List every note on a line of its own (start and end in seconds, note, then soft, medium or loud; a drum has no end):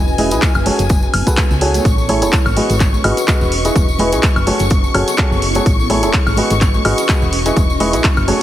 0.00 0.33 E1 loud
0.00 1.14 C#4 medium
0.00 1.14 F#4 medium
0.00 1.14 B4 medium
0.00 1.14 D#5 medium
0.00 1.86 G#5 medium
0.08 tambourine soft
0.18 0.28 E4 medium
0.18 0.28 G#4 medium
0.18 0.28 B4 medium
0.18 0.28 D#5 loud
0.18 open hi-hat loud
0.18 high conga medium
0.31 0.39 B1 medium
0.31 0.45 E4 medium
0.31 0.45 G#4 medium
0.31 0.45 B4 medium
0.31 0.45 D#5 medium
0.31 closed hi-hat medium
0.31 tambourine medium
0.42 kick loud
0.42 clap loud
0.42 closed hi-hat soft
0.42 tambourine medium
0.55 0.70 F#1 medium
0.55 tambourine soft
0.55 high woodblock medium
0.66 2.14 B3 medium
0.66 0.82 F#4 medium
0.66 0.82 G#4 medium
0.66 0.82 A4 medium
0.66 0.82 C#5 medium
0.66 open hi-hat loud
0.66 high conga medium
0.71 2.14 E4 medium
0.79 1.08 F#1 loud
0.79 closed hi-hat medium
0.79 tambourine medium
0.89 kick loud
0.89 closed hi-hat soft
0.89 tambourine medium
0.99 2.14 A4 medium
0.99 2.14 C#5 medium
0.99 tambourine soft
1.14 1.22 F#1 medium
1.14 open hi-hat loud
1.14 high woodblock medium
1.27 1.41 F#4 medium
1.27 1.41 G#4 medium
1.27 1.41 A4 medium
1.27 1.41 B4 medium
1.27 kick medium
1.27 closed hi-hat medium
1.27 tambourine medium
1.37 kick loud
1.37 clap loud
1.37 closed hi-hat soft
1.37 tambourine medium
1.51 1.79 C#2 medium
1.51 tambourine soft
1.61 1.84 F#4 medium
1.61 1.84 G#4 medium
1.61 1.84 A4 medium
1.61 1.84 C#5 medium
1.61 open hi-hat loud
1.74 closed hi-hat medium
1.74 tambourine medium
1.74 high conga medium
1.85 2.24 A1 loud
1.85 4.95 C#4 medium
1.85 8.43 C#6 medium
1.85 kick loud
1.85 closed hi-hat soft
1.85 tambourine medium
1.98 tambourine soft
2.04 4.95 D#5 medium
2.09 2.19 E4 medium
2.09 2.19 G#4 medium
2.09 2.19 A4 medium
2.09 2.19 C#5 loud
2.09 open hi-hat loud
2.09 high conga medium
2.18 4.95 F#4 medium
2.18 2.36 G#4 medium
2.18 4.95 B4 medium
2.18 closed hi-hat medium
2.22 2.29 E1 medium
2.22 2.36 E4 medium
2.22 2.36 A4 medium
2.22 2.36 C#5 medium
2.22 tambourine medium
2.33 kick loud
2.33 clap loud
2.33 closed hi-hat soft
2.33 tambourine medium
2.46 2.61 G#1 loud
2.46 tambourine soft
2.46 high woodblock medium
2.56 2.72 F#4 medium
2.56 2.72 G#4 medium
2.56 2.72 B4 medium
2.56 2.72 D#5 medium
2.56 open hi-hat loud
2.56 high conga medium
2.70 2.99 G#1 loud
2.70 closed hi-hat medium
2.70 tambourine medium
2.80 kick loud
2.80 clap medium
2.80 closed hi-hat medium
2.80 tambourine medium
2.93 tambourine soft
2.93 high conga medium
3.04 3.13 G#1 loud
3.04 3.20 F#4 medium
3.04 3.20 G#4 medium
3.04 3.20 B4 medium
3.04 3.20 D#5 medium
3.04 open hi-hat loud
3.04 high woodblock medium
3.17 closed hi-hat medium
3.17 tambourine medium
3.28 3.51 F#4 medium
3.28 3.51 G#4 medium
3.28 3.51 B4 medium
3.28 3.51 D#5 medium
3.28 kick loud
3.28 clap loud
3.28 closed hi-hat soft
3.28 tambourine medium
3.41 3.70 E1 medium
3.41 tambourine soft
3.52 open hi-hat loud
3.65 3.79 E4 medium
3.65 3.79 G#4 medium
3.65 3.79 B4 medium
3.65 3.79 D#5 medium
3.65 closed hi-hat medium
3.65 tambourine medium
3.76 4.14 E1 loud
3.76 kick loud
3.76 closed hi-hat medium
3.76 tambourine medium
3.88 tambourine soft
3.99 4.09 E4 medium
3.99 4.09 G#4 medium
3.99 4.09 B4 medium
3.99 4.09 D#5 loud
3.99 open hi-hat medium
3.99 high conga medium
4.12 4.20 B1 medium
4.12 4.26 E4 medium
4.12 4.26 G#4 medium
4.12 4.26 B4 medium
4.12 4.26 D#5 medium
4.12 closed hi-hat medium
4.12 tambourine medium
4.23 kick loud
4.23 clap loud
4.23 closed hi-hat medium
4.23 tambourine medium
4.36 4.51 F#1 loud
4.36 tambourine soft
4.36 high woodblock medium
4.47 5.95 B3 medium
4.47 4.63 F#4 medium
4.47 4.63 G#4 medium
4.47 4.63 A4 medium
4.47 4.63 C#5 medium
4.47 open hi-hat loud
4.47 high conga medium
4.59 4.89 F#1 loud
4.59 closed hi-hat medium
4.59 tambourine medium
4.68 5.95 E4 medium
4.68 kick loud
4.68 closed hi-hat medium
4.68 tambourine medium
4.84 tambourine soft
4.95 5.03 F#1 medium
4.95 5.10 F#4 medium
4.95 5.10 G#4 medium
4.95 5.10 A4 medium
4.95 5.95 A4 medium
4.95 5.10 C#5 loud
4.95 open hi-hat loud
4.95 high woodblock medium
5.01 5.95 C#5 medium
5.08 closed hi-hat medium
5.08 tambourine medium
5.18 5.42 F#4 medium
5.18 5.42 G#4 medium
5.18 5.42 A4 medium
5.18 5.42 C#5 medium
5.18 kick loud
5.18 clap loud
5.18 closed hi-hat medium
5.18 tambourine medium
5.31 5.60 F#1 loud
5.31 tambourine soft
5.42 open hi-hat loud
5.55 5.65 F#4 medium
5.55 5.65 G#4 medium
5.55 5.65 A4 medium
5.55 5.65 C#5 medium
5.55 closed hi-hat medium
5.55 tambourine medium
5.55 high conga medium
5.66 6.04 A1 loud
5.66 8.43 C#4 medium
5.66 kick loud
5.66 closed hi-hat medium
5.66 tambourine medium
5.79 tambourine soft
5.90 6.00 E4 medium
5.90 8.43 F#4 medium
5.90 6.00 G#4 medium
5.90 6.00 A4 medium
5.90 6.00 C#5 loud
5.90 open hi-hat loud
5.90 high conga medium
5.99 8.43 B4 medium
5.99 8.43 D#5 medium
5.99 tambourine medium
6.03 6.10 E1 medium
6.03 6.17 E4 medium
6.03 6.17 G#4 medium
6.03 6.17 A4 medium
6.03 6.17 C#5 medium
6.03 closed hi-hat medium
6.13 kick loud
6.13 clap loud
6.13 closed hi-hat medium
6.13 tambourine medium
6.27 6.42 G#1 loud
6.27 tambourine soft
6.27 high woodblock medium
6.37 6.53 F#4 medium
6.37 6.53 G#4 medium
6.37 6.53 B4 medium
6.37 6.53 D#5 medium
6.37 open hi-hat loud
6.37 high conga medium
6.50 6.79 G#1 loud
6.50 closed hi-hat medium
6.50 tambourine medium
6.61 kick loud
6.61 clap medium
6.61 closed hi-hat medium
6.61 tambourine medium
6.74 tambourine soft
6.74 high conga medium
6.85 6.94 G#1 loud
6.85 7.01 F#4 medium
6.85 7.01 G#4 medium
6.85 7.01 B4 medium
6.85 7.01 D#5 loud
6.85 open hi-hat loud
6.85 high woodblock medium
6.98 closed hi-hat medium
6.98 tambourine medium
7.09 7.31 F#4 medium
7.09 7.31 G#4 medium
7.09 7.31 B4 medium
7.09 7.31 D#5 medium
7.09 kick loud
7.09 clap loud
7.09 closed hi-hat medium
7.09 tambourine medium
7.22 7.51 E1 loud
7.22 tambourine soft
7.33 open hi-hat loud
7.46 7.60 E4 medium
7.46 7.60 G#4 medium
7.46 7.60 B4 medium
7.46 7.60 D#5 medium
7.46 closed hi-hat medium
7.46 tambourine medium
7.56 7.95 E1 loud
7.56 kick loud
7.56 closed hi-hat medium
7.56 tambourine medium
7.70 tambourine soft
7.80 7.90 E4 medium
7.80 7.90 G#4 medium
7.80 7.90 B4 medium
7.80 7.90 D#5 loud
7.80 open hi-hat loud
7.80 high conga medium
7.93 8.01 B1 medium
7.93 8.07 E4 medium
7.93 8.07 G#4 medium
7.93 8.07 B4 medium
7.93 8.07 D#5 medium
7.93 closed hi-hat medium
7.93 tambourine medium
8.04 kick loud
8.04 clap loud
8.04 closed hi-hat medium
8.04 tambourine medium
8.17 8.32 F#1 loud
8.17 tambourine soft
8.17 high woodblock medium
8.28 8.43 B3 medium
8.28 8.43 F#4 medium
8.28 8.43 G#4 medium
8.28 8.43 A4 medium
8.28 8.43 C#5 medium
8.28 open hi-hat loud
8.28 high conga medium